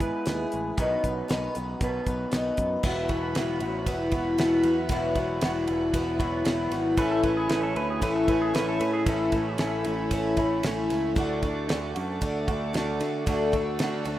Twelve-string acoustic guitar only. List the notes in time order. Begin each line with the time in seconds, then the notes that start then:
0.00 B3 E4 G#4
0.27 G#3 B3 E4 G#4
0.78 B2 D#3 F#3 B3 D#4 B4
1.04 F#3 B3 D#4 B4
1.28 B2 D#3 F#3 B3 D#4 B4
1.55 F#3 B3 D#4 B4
1.81 F#3 B3 D#4 B4
2.07 F#3 B3 D#4 B4
2.32 B2 D#3 F#3 B3 D#4 B4
2.83 E2 B2 E3 B3 E4 F#4
3.08 E3 B3 E4 F#4
3.86 E2 B2 E3 B3 E4 F#4
4.12 E3 B3 E4 F#4
4.38 E3 B3 E4 F#4
4.63 E3 B3 E4 F#4
4.90 E2 B2 E3 B3 E4 F#4
5.15 E3 B3 E4 F#4
5.94 E2 B2 E3 B3 E4 F#4
6.19 E3 B3 E4 F#4
6.45 E3 B3 E4 F#4
6.72 E3 B3 E4 F#4
6.97 A2 E3 A3 C#4 E4
7.23 A3 C#4 E4
8.01 A2 E3 A3 C#4 E4
8.28 A3 C#4 E4
8.54 E3 A3 C#4 E4
8.80 A3 C#4 E4
9.07 A2 E3 A3 C#4 E4
9.33 A3 C#4 E4
9.85 A3 C#4 E4
10.12 A2 E3 A3 C#4 E4
10.38 A3 C#4 E4
10.64 E3 A3 C#4 E4
10.90 A3 C#4 E4
11.15 D3 A3 D4 F#4
11.42 A3 D4 F#4
12.21 D3 A3 D4 F#4
12.48 A3 D4 F#4
12.73 D3 A3 D4 F#4
13.00 A3 D4 F#4
13.26 D3 A3 D4 F#4
13.52 A3 D4 F#4
14.05 A3 D4 F#4